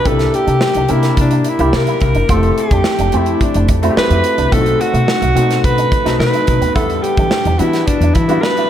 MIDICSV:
0, 0, Header, 1, 8, 480
1, 0, Start_track
1, 0, Key_signature, 1, "minor"
1, 0, Tempo, 558659
1, 46, Time_signature, 4, 2, 24, 8
1, 7474, End_track
2, 0, Start_track
2, 0, Title_t, "Alto saxophone"
2, 0, Program_c, 0, 65
2, 65, Note_on_c, 0, 69, 91
2, 302, Note_on_c, 0, 67, 95
2, 315, Note_off_c, 0, 69, 0
2, 784, Note_on_c, 0, 64, 81
2, 797, Note_off_c, 0, 67, 0
2, 1015, Note_off_c, 0, 64, 0
2, 1040, Note_on_c, 0, 62, 76
2, 1281, Note_on_c, 0, 64, 80
2, 1294, Note_off_c, 0, 62, 0
2, 1518, Note_on_c, 0, 70, 88
2, 1531, Note_off_c, 0, 64, 0
2, 1995, Note_on_c, 0, 69, 90
2, 2007, Note_off_c, 0, 70, 0
2, 2239, Note_on_c, 0, 67, 86
2, 2252, Note_off_c, 0, 69, 0
2, 2719, Note_on_c, 0, 64, 73
2, 2732, Note_off_c, 0, 67, 0
2, 2953, Note_on_c, 0, 62, 70
2, 2966, Note_off_c, 0, 64, 0
2, 3181, Note_off_c, 0, 62, 0
2, 3423, Note_on_c, 0, 71, 97
2, 3890, Note_on_c, 0, 69, 99
2, 3903, Note_off_c, 0, 71, 0
2, 4131, Note_on_c, 0, 66, 103
2, 4144, Note_off_c, 0, 69, 0
2, 4848, Note_off_c, 0, 66, 0
2, 4853, Note_on_c, 0, 71, 91
2, 5298, Note_off_c, 0, 71, 0
2, 5321, Note_on_c, 0, 71, 90
2, 5771, Note_off_c, 0, 71, 0
2, 5803, Note_on_c, 0, 69, 94
2, 6039, Note_on_c, 0, 67, 94
2, 6052, Note_off_c, 0, 69, 0
2, 6521, Note_on_c, 0, 64, 80
2, 6534, Note_off_c, 0, 67, 0
2, 6757, Note_on_c, 0, 62, 78
2, 6770, Note_off_c, 0, 64, 0
2, 6997, Note_on_c, 0, 64, 79
2, 7009, Note_off_c, 0, 62, 0
2, 7234, Note_on_c, 0, 71, 90
2, 7247, Note_off_c, 0, 64, 0
2, 7474, Note_off_c, 0, 71, 0
2, 7474, End_track
3, 0, Start_track
3, 0, Title_t, "Clean electric guitar"
3, 0, Program_c, 1, 27
3, 45, Note_on_c, 1, 60, 70
3, 134, Note_off_c, 1, 60, 0
3, 401, Note_on_c, 1, 62, 64
3, 492, Note_off_c, 1, 62, 0
3, 657, Note_on_c, 1, 62, 68
3, 741, Note_off_c, 1, 62, 0
3, 763, Note_on_c, 1, 60, 75
3, 853, Note_off_c, 1, 60, 0
3, 1133, Note_on_c, 1, 62, 68
3, 1219, Note_off_c, 1, 62, 0
3, 1372, Note_on_c, 1, 64, 73
3, 1459, Note_off_c, 1, 64, 0
3, 1613, Note_on_c, 1, 64, 62
3, 1699, Note_off_c, 1, 64, 0
3, 1850, Note_on_c, 1, 62, 75
3, 1937, Note_off_c, 1, 62, 0
3, 1973, Note_on_c, 1, 65, 75
3, 2060, Note_off_c, 1, 65, 0
3, 2337, Note_on_c, 1, 62, 65
3, 2422, Note_off_c, 1, 62, 0
3, 2574, Note_on_c, 1, 62, 70
3, 2660, Note_off_c, 1, 62, 0
3, 2697, Note_on_c, 1, 60, 78
3, 2782, Note_off_c, 1, 60, 0
3, 3051, Note_on_c, 1, 62, 66
3, 3138, Note_off_c, 1, 62, 0
3, 3293, Note_on_c, 1, 64, 71
3, 3379, Note_off_c, 1, 64, 0
3, 3535, Note_on_c, 1, 64, 65
3, 3621, Note_off_c, 1, 64, 0
3, 3763, Note_on_c, 1, 62, 73
3, 3853, Note_off_c, 1, 62, 0
3, 3882, Note_on_c, 1, 59, 78
3, 3973, Note_off_c, 1, 59, 0
3, 4237, Note_on_c, 1, 57, 66
3, 4329, Note_off_c, 1, 57, 0
3, 4483, Note_on_c, 1, 57, 60
3, 4573, Note_off_c, 1, 57, 0
3, 4603, Note_on_c, 1, 59, 74
3, 4693, Note_off_c, 1, 59, 0
3, 4967, Note_on_c, 1, 62, 62
3, 5056, Note_off_c, 1, 62, 0
3, 5198, Note_on_c, 1, 63, 69
3, 5290, Note_off_c, 1, 63, 0
3, 5449, Note_on_c, 1, 63, 59
3, 5537, Note_off_c, 1, 63, 0
3, 5679, Note_on_c, 1, 59, 69
3, 5771, Note_off_c, 1, 59, 0
3, 5804, Note_on_c, 1, 64, 73
3, 5894, Note_off_c, 1, 64, 0
3, 6173, Note_on_c, 1, 62, 65
3, 6260, Note_off_c, 1, 62, 0
3, 6411, Note_on_c, 1, 62, 66
3, 6499, Note_off_c, 1, 62, 0
3, 6531, Note_on_c, 1, 59, 69
3, 6618, Note_off_c, 1, 59, 0
3, 6899, Note_on_c, 1, 62, 65
3, 6983, Note_off_c, 1, 62, 0
3, 7134, Note_on_c, 1, 64, 73
3, 7220, Note_off_c, 1, 64, 0
3, 7371, Note_on_c, 1, 64, 59
3, 7458, Note_off_c, 1, 64, 0
3, 7474, End_track
4, 0, Start_track
4, 0, Title_t, "Grand piano"
4, 0, Program_c, 2, 0
4, 0, Control_c, 2, 64, 127
4, 46, Note_on_c, 2, 58, 57
4, 48, Note_on_c, 2, 62, 52
4, 52, Note_on_c, 2, 64, 52
4, 52, Note_on_c, 2, 67, 69
4, 58, Control_c, 2, 64, 0
4, 203, Control_c, 2, 64, 127
4, 611, Note_off_c, 2, 58, 0
4, 613, Note_off_c, 2, 62, 0
4, 614, Note_off_c, 2, 64, 0
4, 614, Note_off_c, 2, 67, 0
4, 768, Note_on_c, 2, 58, 68
4, 774, Note_on_c, 2, 62, 54
4, 774, Note_on_c, 2, 64, 54
4, 779, Note_on_c, 2, 67, 68
4, 1239, Note_off_c, 2, 58, 0
4, 1241, Note_off_c, 2, 62, 0
4, 1242, Note_off_c, 2, 64, 0
4, 1244, Note_off_c, 2, 67, 0
4, 1369, Note_on_c, 2, 58, 70
4, 1375, Note_on_c, 2, 62, 66
4, 1376, Note_on_c, 2, 64, 68
4, 1379, Note_on_c, 2, 67, 83
4, 1839, Note_off_c, 2, 58, 0
4, 1842, Note_off_c, 2, 62, 0
4, 1843, Note_off_c, 2, 64, 0
4, 1844, Note_off_c, 2, 67, 0
4, 1970, Note_on_c, 2, 57, 63
4, 1974, Note_on_c, 2, 60, 55
4, 1976, Note_on_c, 2, 64, 57
4, 1979, Control_c, 2, 64, 0
4, 1980, Note_on_c, 2, 67, 67
4, 2110, Control_c, 2, 64, 127
4, 2534, Note_off_c, 2, 57, 0
4, 2536, Note_off_c, 2, 60, 0
4, 2537, Note_off_c, 2, 64, 0
4, 2539, Note_off_c, 2, 67, 0
4, 2684, Note_on_c, 2, 57, 63
4, 2686, Note_on_c, 2, 60, 56
4, 2694, Note_on_c, 2, 64, 53
4, 2694, Note_on_c, 2, 67, 67
4, 3157, Note_off_c, 2, 57, 0
4, 3158, Note_off_c, 2, 60, 0
4, 3162, Note_off_c, 2, 64, 0
4, 3162, Note_off_c, 2, 67, 0
4, 3285, Note_on_c, 2, 57, 75
4, 3290, Note_on_c, 2, 60, 74
4, 3291, Note_on_c, 2, 64, 72
4, 3296, Note_on_c, 2, 66, 69
4, 3348, Note_off_c, 2, 66, 0
4, 3356, Note_on_c, 2, 67, 85
4, 3758, Note_off_c, 2, 57, 0
4, 3760, Note_off_c, 2, 60, 0
4, 3761, Note_off_c, 2, 64, 0
4, 3793, Note_off_c, 2, 67, 0
4, 3891, Note_on_c, 2, 57, 61
4, 3893, Note_on_c, 2, 60, 58
4, 3897, Note_on_c, 2, 63, 54
4, 3898, Control_c, 2, 64, 0
4, 3902, Note_on_c, 2, 65, 55
4, 3951, Note_off_c, 2, 65, 0
4, 3959, Note_on_c, 2, 66, 69
4, 4026, Control_c, 2, 64, 127
4, 4455, Note_off_c, 2, 57, 0
4, 4456, Note_off_c, 2, 60, 0
4, 4458, Note_off_c, 2, 63, 0
4, 4489, Note_off_c, 2, 66, 0
4, 4596, Note_on_c, 2, 57, 65
4, 4598, Note_on_c, 2, 60, 57
4, 4604, Note_on_c, 2, 63, 58
4, 4606, Note_on_c, 2, 66, 68
4, 5073, Note_off_c, 2, 57, 0
4, 5074, Note_off_c, 2, 60, 0
4, 5077, Note_off_c, 2, 63, 0
4, 5078, Note_off_c, 2, 66, 0
4, 5198, Note_on_c, 2, 57, 71
4, 5202, Note_on_c, 2, 60, 60
4, 5205, Note_on_c, 2, 63, 66
4, 5210, Note_on_c, 2, 66, 72
4, 5674, Note_off_c, 2, 57, 0
4, 5676, Note_off_c, 2, 60, 0
4, 5678, Note_off_c, 2, 63, 0
4, 5680, Note_off_c, 2, 66, 0
4, 5794, Note_on_c, 2, 55, 61
4, 5797, Note_on_c, 2, 59, 53
4, 5800, Note_on_c, 2, 62, 51
4, 5803, Note_on_c, 2, 78, 61
4, 5821, Control_c, 2, 64, 0
4, 5957, Control_c, 2, 64, 127
4, 6367, Note_off_c, 2, 55, 0
4, 6368, Note_off_c, 2, 59, 0
4, 6370, Note_off_c, 2, 62, 0
4, 6371, Note_off_c, 2, 78, 0
4, 6522, Note_on_c, 2, 55, 60
4, 6526, Note_on_c, 2, 59, 54
4, 6529, Note_on_c, 2, 62, 58
4, 6533, Note_on_c, 2, 66, 64
4, 6996, Note_off_c, 2, 55, 0
4, 6998, Note_off_c, 2, 59, 0
4, 7000, Note_off_c, 2, 62, 0
4, 7002, Note_off_c, 2, 66, 0
4, 7116, Note_on_c, 2, 55, 73
4, 7116, Note_on_c, 2, 59, 69
4, 7121, Note_on_c, 2, 62, 70
4, 7126, Note_on_c, 2, 66, 84
4, 7474, Note_off_c, 2, 55, 0
4, 7474, Note_off_c, 2, 59, 0
4, 7474, Note_off_c, 2, 62, 0
4, 7474, Note_off_c, 2, 66, 0
4, 7474, End_track
5, 0, Start_track
5, 0, Title_t, "Upright bass"
5, 0, Program_c, 3, 32
5, 47, Note_on_c, 3, 36, 86
5, 222, Note_off_c, 3, 36, 0
5, 405, Note_on_c, 3, 48, 82
5, 493, Note_off_c, 3, 48, 0
5, 647, Note_on_c, 3, 36, 72
5, 734, Note_off_c, 3, 36, 0
5, 770, Note_on_c, 3, 48, 86
5, 944, Note_off_c, 3, 48, 0
5, 1007, Note_on_c, 3, 48, 91
5, 1182, Note_off_c, 3, 48, 0
5, 1366, Note_on_c, 3, 36, 85
5, 1454, Note_off_c, 3, 36, 0
5, 1732, Note_on_c, 3, 36, 87
5, 1818, Note_off_c, 3, 36, 0
5, 1850, Note_on_c, 3, 30, 73
5, 1937, Note_off_c, 3, 30, 0
5, 1969, Note_on_c, 3, 29, 84
5, 2144, Note_off_c, 3, 29, 0
5, 2329, Note_on_c, 3, 41, 91
5, 2416, Note_off_c, 3, 41, 0
5, 2567, Note_on_c, 3, 29, 80
5, 2655, Note_off_c, 3, 29, 0
5, 2696, Note_on_c, 3, 41, 82
5, 2868, Note_off_c, 3, 41, 0
5, 3053, Note_on_c, 3, 29, 93
5, 3139, Note_off_c, 3, 29, 0
5, 3525, Note_on_c, 3, 41, 93
5, 3614, Note_off_c, 3, 41, 0
5, 3764, Note_on_c, 3, 36, 87
5, 3853, Note_off_c, 3, 36, 0
5, 3885, Note_on_c, 3, 35, 80
5, 4062, Note_off_c, 3, 35, 0
5, 4239, Note_on_c, 3, 47, 90
5, 4330, Note_off_c, 3, 47, 0
5, 4483, Note_on_c, 3, 35, 78
5, 4572, Note_off_c, 3, 35, 0
5, 4599, Note_on_c, 3, 47, 86
5, 4778, Note_off_c, 3, 47, 0
5, 4847, Note_on_c, 3, 47, 88
5, 5023, Note_off_c, 3, 47, 0
5, 5203, Note_on_c, 3, 35, 80
5, 5293, Note_off_c, 3, 35, 0
5, 5319, Note_on_c, 3, 47, 87
5, 5410, Note_off_c, 3, 47, 0
5, 5569, Note_on_c, 3, 35, 74
5, 5657, Note_off_c, 3, 35, 0
5, 5675, Note_on_c, 3, 39, 74
5, 5768, Note_off_c, 3, 39, 0
5, 5806, Note_on_c, 3, 40, 89
5, 5982, Note_off_c, 3, 40, 0
5, 6163, Note_on_c, 3, 52, 81
5, 6253, Note_off_c, 3, 52, 0
5, 6406, Note_on_c, 3, 40, 85
5, 6494, Note_off_c, 3, 40, 0
5, 6528, Note_on_c, 3, 52, 86
5, 6703, Note_off_c, 3, 52, 0
5, 6879, Note_on_c, 3, 40, 86
5, 6970, Note_off_c, 3, 40, 0
5, 7005, Note_on_c, 3, 52, 91
5, 7182, Note_off_c, 3, 52, 0
5, 7474, End_track
6, 0, Start_track
6, 0, Title_t, "Muted clean electric guitar strokes"
6, 290, Note_on_c, 9, 29, 39
6, 376, Note_off_c, 9, 29, 0
6, 523, Note_on_c, 9, 29, 38
6, 609, Note_off_c, 9, 29, 0
6, 1256, Note_on_c, 9, 29, 40
6, 1342, Note_off_c, 9, 29, 0
6, 1729, Note_on_c, 9, 29, 40
6, 1815, Note_off_c, 9, 29, 0
6, 2218, Note_on_c, 9, 29, 39
6, 2303, Note_off_c, 9, 29, 0
6, 2459, Note_on_c, 9, 29, 40
6, 2545, Note_off_c, 9, 29, 0
6, 3172, Note_on_c, 9, 29, 44
6, 3258, Note_off_c, 9, 29, 0
6, 3647, Note_on_c, 9, 29, 39
6, 3733, Note_off_c, 9, 29, 0
6, 4127, Note_on_c, 9, 29, 37
6, 4212, Note_off_c, 9, 29, 0
6, 4362, Note_on_c, 9, 29, 37
6, 4448, Note_off_c, 9, 29, 0
6, 5083, Note_on_c, 9, 29, 38
6, 5169, Note_off_c, 9, 29, 0
6, 5562, Note_on_c, 9, 29, 39
6, 5648, Note_off_c, 9, 29, 0
6, 6053, Note_on_c, 9, 29, 40
6, 6139, Note_off_c, 9, 29, 0
6, 6294, Note_on_c, 9, 29, 41
6, 6380, Note_off_c, 9, 29, 0
6, 7014, Note_on_c, 9, 29, 43
6, 7100, Note_off_c, 9, 29, 0
6, 7474, End_track
7, 0, Start_track
7, 0, Title_t, "Muted upright bass strokes"
7, 3409, Note_on_c, 9, 29, 45
7, 3495, Note_off_c, 9, 29, 0
7, 7474, End_track
8, 0, Start_track
8, 0, Title_t, "Drums"
8, 46, Note_on_c, 9, 42, 73
8, 48, Note_on_c, 9, 36, 104
8, 132, Note_off_c, 9, 42, 0
8, 133, Note_off_c, 9, 36, 0
8, 166, Note_on_c, 9, 42, 38
8, 169, Note_on_c, 9, 38, 30
8, 252, Note_off_c, 9, 42, 0
8, 255, Note_off_c, 9, 38, 0
8, 291, Note_on_c, 9, 42, 53
8, 377, Note_off_c, 9, 42, 0
8, 409, Note_on_c, 9, 42, 45
8, 494, Note_off_c, 9, 42, 0
8, 522, Note_on_c, 9, 38, 90
8, 608, Note_off_c, 9, 38, 0
8, 640, Note_on_c, 9, 42, 49
8, 726, Note_off_c, 9, 42, 0
8, 760, Note_on_c, 9, 42, 58
8, 846, Note_off_c, 9, 42, 0
8, 884, Note_on_c, 9, 42, 47
8, 887, Note_on_c, 9, 38, 31
8, 970, Note_off_c, 9, 42, 0
8, 973, Note_off_c, 9, 38, 0
8, 1006, Note_on_c, 9, 42, 77
8, 1008, Note_on_c, 9, 36, 76
8, 1092, Note_off_c, 9, 42, 0
8, 1094, Note_off_c, 9, 36, 0
8, 1123, Note_on_c, 9, 42, 51
8, 1209, Note_off_c, 9, 42, 0
8, 1241, Note_on_c, 9, 42, 61
8, 1327, Note_off_c, 9, 42, 0
8, 1366, Note_on_c, 9, 42, 48
8, 1452, Note_off_c, 9, 42, 0
8, 1487, Note_on_c, 9, 38, 94
8, 1573, Note_off_c, 9, 38, 0
8, 1606, Note_on_c, 9, 42, 48
8, 1692, Note_off_c, 9, 42, 0
8, 1723, Note_on_c, 9, 42, 72
8, 1732, Note_on_c, 9, 36, 76
8, 1809, Note_off_c, 9, 42, 0
8, 1818, Note_off_c, 9, 36, 0
8, 1844, Note_on_c, 9, 42, 46
8, 1930, Note_off_c, 9, 42, 0
8, 1967, Note_on_c, 9, 42, 81
8, 1969, Note_on_c, 9, 36, 98
8, 2053, Note_off_c, 9, 42, 0
8, 2055, Note_off_c, 9, 36, 0
8, 2088, Note_on_c, 9, 42, 41
8, 2174, Note_off_c, 9, 42, 0
8, 2214, Note_on_c, 9, 42, 58
8, 2300, Note_off_c, 9, 42, 0
8, 2327, Note_on_c, 9, 42, 50
8, 2329, Note_on_c, 9, 36, 87
8, 2413, Note_off_c, 9, 42, 0
8, 2415, Note_off_c, 9, 36, 0
8, 2441, Note_on_c, 9, 38, 89
8, 2527, Note_off_c, 9, 38, 0
8, 2566, Note_on_c, 9, 42, 52
8, 2652, Note_off_c, 9, 42, 0
8, 2682, Note_on_c, 9, 42, 58
8, 2768, Note_off_c, 9, 42, 0
8, 2801, Note_on_c, 9, 42, 46
8, 2887, Note_off_c, 9, 42, 0
8, 2928, Note_on_c, 9, 36, 79
8, 2928, Note_on_c, 9, 42, 73
8, 3014, Note_off_c, 9, 36, 0
8, 3014, Note_off_c, 9, 42, 0
8, 3045, Note_on_c, 9, 42, 57
8, 3131, Note_off_c, 9, 42, 0
8, 3165, Note_on_c, 9, 42, 64
8, 3168, Note_on_c, 9, 36, 80
8, 3251, Note_off_c, 9, 42, 0
8, 3254, Note_off_c, 9, 36, 0
8, 3290, Note_on_c, 9, 42, 49
8, 3376, Note_off_c, 9, 42, 0
8, 3413, Note_on_c, 9, 38, 91
8, 3499, Note_off_c, 9, 38, 0
8, 3527, Note_on_c, 9, 42, 49
8, 3613, Note_off_c, 9, 42, 0
8, 3641, Note_on_c, 9, 42, 66
8, 3727, Note_off_c, 9, 42, 0
8, 3764, Note_on_c, 9, 42, 49
8, 3850, Note_off_c, 9, 42, 0
8, 3886, Note_on_c, 9, 36, 96
8, 3888, Note_on_c, 9, 42, 79
8, 3972, Note_off_c, 9, 36, 0
8, 3974, Note_off_c, 9, 42, 0
8, 4004, Note_on_c, 9, 42, 38
8, 4090, Note_off_c, 9, 42, 0
8, 4131, Note_on_c, 9, 42, 54
8, 4217, Note_off_c, 9, 42, 0
8, 4249, Note_on_c, 9, 42, 48
8, 4335, Note_off_c, 9, 42, 0
8, 4366, Note_on_c, 9, 38, 87
8, 4452, Note_off_c, 9, 38, 0
8, 4487, Note_on_c, 9, 42, 49
8, 4573, Note_off_c, 9, 42, 0
8, 4611, Note_on_c, 9, 42, 62
8, 4696, Note_off_c, 9, 42, 0
8, 4730, Note_on_c, 9, 42, 47
8, 4734, Note_on_c, 9, 38, 32
8, 4816, Note_off_c, 9, 42, 0
8, 4820, Note_off_c, 9, 38, 0
8, 4848, Note_on_c, 9, 36, 79
8, 4851, Note_on_c, 9, 42, 74
8, 4933, Note_off_c, 9, 36, 0
8, 4937, Note_off_c, 9, 42, 0
8, 4967, Note_on_c, 9, 42, 53
8, 5053, Note_off_c, 9, 42, 0
8, 5085, Note_on_c, 9, 36, 87
8, 5085, Note_on_c, 9, 42, 65
8, 5170, Note_off_c, 9, 42, 0
8, 5171, Note_off_c, 9, 36, 0
8, 5209, Note_on_c, 9, 42, 47
8, 5213, Note_on_c, 9, 38, 32
8, 5295, Note_off_c, 9, 42, 0
8, 5299, Note_off_c, 9, 38, 0
8, 5330, Note_on_c, 9, 38, 83
8, 5416, Note_off_c, 9, 38, 0
8, 5443, Note_on_c, 9, 42, 48
8, 5529, Note_off_c, 9, 42, 0
8, 5561, Note_on_c, 9, 42, 65
8, 5568, Note_on_c, 9, 36, 81
8, 5647, Note_off_c, 9, 42, 0
8, 5653, Note_off_c, 9, 36, 0
8, 5686, Note_on_c, 9, 42, 51
8, 5772, Note_off_c, 9, 42, 0
8, 5805, Note_on_c, 9, 42, 75
8, 5806, Note_on_c, 9, 36, 100
8, 5891, Note_off_c, 9, 42, 0
8, 5892, Note_off_c, 9, 36, 0
8, 5927, Note_on_c, 9, 42, 38
8, 6012, Note_off_c, 9, 42, 0
8, 6047, Note_on_c, 9, 42, 54
8, 6133, Note_off_c, 9, 42, 0
8, 6163, Note_on_c, 9, 42, 47
8, 6165, Note_on_c, 9, 36, 85
8, 6249, Note_off_c, 9, 42, 0
8, 6251, Note_off_c, 9, 36, 0
8, 6280, Note_on_c, 9, 38, 91
8, 6366, Note_off_c, 9, 38, 0
8, 6404, Note_on_c, 9, 42, 46
8, 6489, Note_off_c, 9, 42, 0
8, 6523, Note_on_c, 9, 42, 62
8, 6609, Note_off_c, 9, 42, 0
8, 6645, Note_on_c, 9, 42, 44
8, 6649, Note_on_c, 9, 38, 30
8, 6731, Note_off_c, 9, 42, 0
8, 6735, Note_off_c, 9, 38, 0
8, 6766, Note_on_c, 9, 42, 77
8, 6768, Note_on_c, 9, 36, 76
8, 6852, Note_off_c, 9, 42, 0
8, 6854, Note_off_c, 9, 36, 0
8, 6887, Note_on_c, 9, 42, 54
8, 6973, Note_off_c, 9, 42, 0
8, 7001, Note_on_c, 9, 42, 70
8, 7007, Note_on_c, 9, 36, 83
8, 7087, Note_off_c, 9, 42, 0
8, 7093, Note_off_c, 9, 36, 0
8, 7122, Note_on_c, 9, 42, 50
8, 7208, Note_off_c, 9, 42, 0
8, 7246, Note_on_c, 9, 38, 90
8, 7332, Note_off_c, 9, 38, 0
8, 7365, Note_on_c, 9, 42, 44
8, 7451, Note_off_c, 9, 42, 0
8, 7474, End_track
0, 0, End_of_file